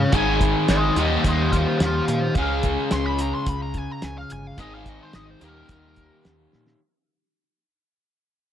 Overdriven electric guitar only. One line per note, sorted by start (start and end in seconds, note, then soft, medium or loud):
0.00 0.11 C#3 medium
0.00 0.11 G#3 medium
0.00 0.12 C#4 medium
0.00 0.12 F4 medium
0.00 0.12 G#4 medium
0.13 0.95 G#2 medium
0.13 0.95 D#3 medium
0.13 0.95 G#3 medium
0.13 0.95 C4 medium
0.13 0.95 D#4 medium
0.13 0.96 G#4 loud
0.97 2.34 D#3 medium
0.97 2.35 G3 medium
0.97 2.35 A#3 medium
0.97 2.35 D#4 medium
0.97 2.36 G4 medium
2.37 4.57 C#3 medium
2.37 4.58 G#3 medium
2.37 4.58 C#4 medium
2.37 4.58 F4 medium
2.37 4.58 G#4 medium
4.58 5.40 G#2 medium
4.58 5.40 D#3 medium
4.58 5.41 G#3 medium
4.58 5.41 C4 medium
4.58 5.41 D#4 medium
4.58 5.41 G#4 medium
5.41 6.79 D#3 medium
5.41 6.79 G3 medium
5.41 6.79 A#3 medium
5.41 6.80 D#4 medium
5.41 6.80 G4 medium